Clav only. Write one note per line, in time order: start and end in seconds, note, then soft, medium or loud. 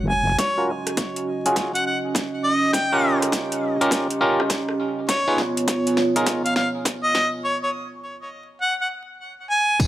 0.58 0.71 C#4 medium
0.58 0.71 F4 medium
0.58 0.71 F#4 medium
0.58 0.71 A#4 medium
1.46 1.72 C#4 medium
1.46 1.72 F4 medium
1.46 1.72 F#4 medium
1.46 1.72 G#4 medium
2.93 3.76 C#4 medium
2.93 3.76 F4 medium
2.93 3.76 G4 medium
2.93 3.76 A#4 loud
3.81 4.07 C#4 medium
3.81 4.07 F4 medium
3.81 4.07 G4 medium
3.81 4.07 A#4 medium
4.21 4.41 C#4 medium
4.21 4.41 F4 medium
4.21 4.41 G4 medium
4.21 4.41 A#4 loud
5.28 5.41 D#4 medium
5.28 5.41 F4 medium
5.28 5.41 G#4 medium
5.28 5.41 B4 loud
6.16 6.42 D#4 medium
6.16 6.43 F4 medium
6.16 6.42 G#4 medium
6.16 6.42 A#4 medium